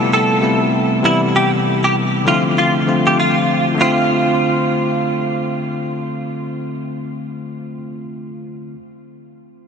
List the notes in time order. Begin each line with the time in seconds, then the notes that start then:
Already playing: C3 G3 A3 B3 E4
0.13 A4
0.41 C3 G3 A3 B3 E4
1.03 C3 E3 G3 B3 E4
1.36 G4
1.84 G4
2.25 D3 F3 A3 C4 E4 F4
2.34 F4
2.58 F4
2.86 D3 F3 A3 C4 F4
3.07 G4
3.20 F4
3.75 D3 A3
3.81 C4 F4